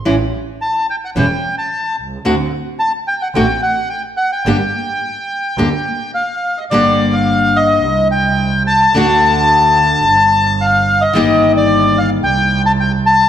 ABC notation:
X:1
M:4/4
L:1/16
Q:1/4=108
K:Gm
V:1 name="Bandoneon"
z4 a2 g ^f g3 a3 z2 | z4 a2 g ^f g2 f2 g2 f g- | g12 f3 e | d3 f3 e4 g4 a2- |
a12 f3 e- | e3 d3 f2 g3 a g2 a2 |]
V:2 name="Nylon-string guitar"
[=E,G,^C=E]2 z6 [E,G,CE]2 z6 | [D,A,C^F]2 z6 [D,A,CF]2 z6 | [D,G,B,DG]2 z6 [D,G,B,DG]2 z6 | [D,G,B,DG]8 z8 |
[D,A,D^F]8 z8 | [E,G,B,EG]8 z8 |]
V:3 name="Double bass" clef=bass
A,,,2 z6 =E,,,2 z4 C,,2 | D,,2 z6 A,,,2 z6 | G,,,2 z6 D,,2 z6 | G,,,8 C,,8 |
D,,8 G,,,8 | G,,,8 C,,8 |]